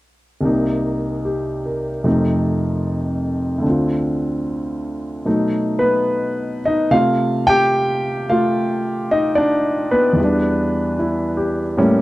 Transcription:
0.41 C2 C3 A#3
0.45 D#4
1.25 G4
1.66 A#4
2.04 F2 C3 A3 D#4
3.58 D2 D3
3.66 C4 F4
5.25 B2 F#3 A3 D#4
5.79 B3 B4
6.65 D#4 D#5
6.91 C3 A3 F4 F5
7.47 G4 G5
8.29 A3 F4 F5
9.11 D#4 D#5
9.35 D4 D5
9.91 B3 B4
10.13 E2 E3
10.20 G3 D4
10.99 E4
11.37 G4
11.77 A2 G3 A#3 C#4

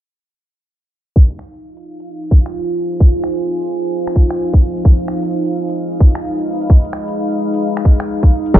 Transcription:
1.16 D#4 F4 F5, kick
1.31 closed hi-hat
1.39 finger snap
1.54 C5, closed hi-hat
1.77 closed hi-hat
2.00 closed hi-hat
2.07 G#5
2.23 closed hi-hat
2.31 kick
2.46 finger snap, closed hi-hat
2.69 closed hi-hat
2.92 closed hi-hat
3.00 kick
3.15 closed hi-hat
3.24 finger snap
3.38 closed hi-hat
3.61 closed hi-hat
3.84 closed hi-hat
4.07 finger snap, closed hi-hat
4.16 kick
4.31 finger snap, closed hi-hat
4.54 kick, closed hi-hat
4.77 closed hi-hat
4.85 G#4, kick
5.00 closed hi-hat
5.05 D#5, finger snap
5.23 closed hi-hat
5.46 closed hi-hat
5.69 closed hi-hat
5.89 B5, closed hi-hat
6.00 kick
6.15 finger snap, closed hi-hat
6.38 closed hi-hat
6.62 closed hi-hat
6.70 kick
6.85 closed hi-hat
6.93 finger snap
7.08 closed hi-hat
7.31 closed hi-hat
7.54 closed hi-hat
7.77 finger snap, closed hi-hat
7.85 kick
8.00 finger snap, closed hi-hat
8.23 kick, closed hi-hat
8.46 closed hi-hat
8.54 F1 D#4 G4 G#4 A#4, kick, shaker

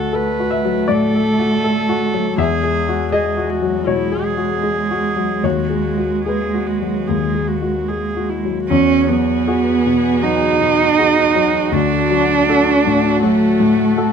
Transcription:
Already playing: D2 A3 F#4 A4 F#5
0.13 A4 B4
0.39 F#4
0.51 E5
0.65 F#3
0.88 A2 A4 D5
1.15 A4
1.39 F#4
1.64 A4
1.89 F#4
2.14 F#3
2.38 E2 G#3 G#4 E5
2.64 G#4
2.88 F#4
3.12 G#4 D#5
3.37 F#4
3.49 F#4
3.62 F#3
3.86 B2 E4 C#5
4.12 G#4
4.24 G#4
4.37 F#4
4.63 G#4
4.91 F#4
5.16 F#3
5.43 D#2 F#4 C#5
5.70 G#4
5.98 F#4
6.25 G#4 B4
6.54 F#4
6.66 F#4
6.81 F#3
7.07 D#2 G#4
7.35 G#4
7.47 F#4
7.62 F#4
7.88 G#4
8.17 F#4
8.29 E4
8.45 F#3
8.69 E2 B3 C#4 F#4 G#4
9.08 F#3 B3
9.48 F#4 G#4
9.86 B2
10.23 F#3 D#4
10.60 B2
10.98 F#4 G#4
11.35 F#3
11.72 D2 A3 D4 A4
12.11 F#3
12.49 F#4 A4
12.87 A2
13.23 F#3 A3
13.60 A2
13.98 F#4 A4

